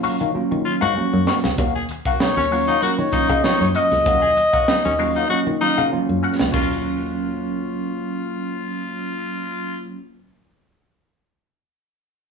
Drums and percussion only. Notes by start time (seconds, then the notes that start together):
0.03 open hi-hat
0.20 closed hi-hat
1.27 snare
1.44 snare
1.58 kick, closed hi-hat
1.75 closed hi-hat
1.89 closed hi-hat
2.05 kick, closed hi-hat
2.20 snare
2.37 closed hi-hat
2.51 open hi-hat
2.68 closed hi-hat
2.82 closed hi-hat
2.99 closed hi-hat
3.13 kick, snare, closed hi-hat
3.29 kick, closed hi-hat
3.44 snare
3.61 closed hi-hat
3.75 closed hi-hat
3.91 snare, closed hi-hat
4.06 kick, closed hi-hat
4.23 closed hi-hat
4.37 closed hi-hat
4.53 kick, closed hi-hat
4.68 snare
4.85 closed hi-hat
4.99 open hi-hat
5.16 closed hi-hat
6.39 snare
6.54 kick, crash